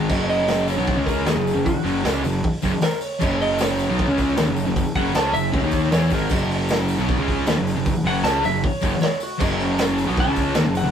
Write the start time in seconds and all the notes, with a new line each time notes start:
0.09 F#1 F#2 C#3 F#3, kick, crash, tambourine
0.29 D#5, open hi-hat, tambourine
0.48 snare, open hi-hat, tambourine
0.68 C#5, open hi-hat, tambourine
0.77 B1 B2 F#3 B3
0.87 kick, open hi-hat, tambourine
0.96 C#2 C#3 G#3 C#4
1.06 A#4, kick, open hi-hat, tambourine
1.25 D#2 D#3 A#3 G#4, snare, open hi-hat, tambourine
1.35 F#1 F#2 C#3
1.47 open hi-hat, tambourine
1.54 F#1 F#2 C#3
1.65 F#4, kick, open hi-hat, tambourine
1.83 F#1 F#2 C#3 F#3, open hi-hat, tambourine
2.03 C#2 C#3 G#3 C#4 F#4, snare, open hi-hat, tambourine
2.24 F#1 F#2 C#3, open hi-hat, tambourine
2.44 kick, open hi-hat, tambourine
2.62 F#1 F#2 C#3, kick, open hi-hat, tambourine
2.81 A#4, snare, open hi-hat, tambourine
3.01 C#5, open hi-hat, tambourine
3.19 F#1 F#2 C#3 F#3, kick, crash, tambourine
3.40 D#5, open hi-hat, tambourine
3.58 C#5, snare, open hi-hat, tambourine
3.79 open hi-hat, tambourine
3.88 B1 B2 F#3 B3
3.99 kick, open hi-hat, tambourine
4.07 C#2 C#3 G#3 C#4
4.17 kick, open hi-hat, tambourine
4.28 snare
4.37 D#2 D#3 A#3, snare, open hi-hat, tambourine
4.46 F#1 F#2 C#3
4.56 open hi-hat, tambourine
4.65 F#1 F#2 C#3
4.76 kick, open hi-hat, tambourine
4.95 F#1 F#2 C#3 F#3 F#5, kick, open hi-hat, tambourine
5.14 C#2 C#3 G#3 C#4 A5, snare, open hi-hat, tambourine
5.33 F#1 F#2 C#3 E5, open hi-hat, tambourine
5.52 C#2 C#3 G#3 C#5, kick, open hi-hat, tambourine
5.62 D#2 D#3 A#3 D#4
5.71 kick, open hi-hat, tambourine
5.83 snare
5.91 E2 E3 B3 E4 C#5, snare, open hi-hat, tambourine
6.10 G#1 G#2 D#3 G#3 A#4, kick, open hi-hat, tambourine
6.29 F#1 F#2 C#3 F#3, kick, crash, tambourine
6.50 open hi-hat, tambourine
6.69 snare, open hi-hat, tambourine
6.88 open hi-hat, tambourine
6.98 B1 B2 F#3 B3
7.08 kick, open hi-hat, tambourine
7.17 C#2 C#3 G#3 C#4
7.28 kick, open hi-hat
7.47 D#2 D#3 A#3, snare, open hi-hat, tambourine
7.56 F#1 F#2 C#3
7.67 open hi-hat, tambourine
7.75 F#1 F#2 C#3
7.86 kick, open hi-hat, tambourine
8.03 F#1 F#2 C#3 F#3 F#5, open hi-hat, tambourine
8.23 C#2 C#3 G#3 C#4 A5, snare, open hi-hat, tambourine
8.44 F#1 F#2 C#3 E5, open hi-hat, tambourine
8.62 C#5, kick, open hi-hat, tambourine
8.81 F#1 F#2 C#3, kick, open hi-hat, tambourine
8.93 snare
9.01 C#5, snare, open hi-hat, tambourine
9.20 F#4, open hi-hat, tambourine
9.38 F#1 F#2 C#3 F#3, kick, crash, tambourine
9.59 open hi-hat, tambourine
9.79 snare, open hi-hat, tambourine
9.98 open hi-hat, tambourine
10.06 B1 B2 F#3 B3
10.16 A5, kick, open hi-hat
10.26 C#2 C#3 G#3 C#4
10.36 kick, open hi-hat, tambourine
10.55 D#2 D#3 A#3, snare, open hi-hat, tambourine
10.65 F#1 F#2 C#3
10.75 F#5, open hi-hat, tambourine
10.84 F#1 F#2 C#3